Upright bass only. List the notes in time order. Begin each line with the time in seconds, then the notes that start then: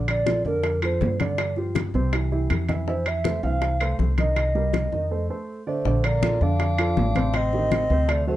Already playing: A#1
0.45 F2
1.01 G2
1.94 C2
2.50 F2
3.43 C2
3.99 C2
4.92 F2
5.85 A#1
6.41 F2
6.97 A1
7.90 D2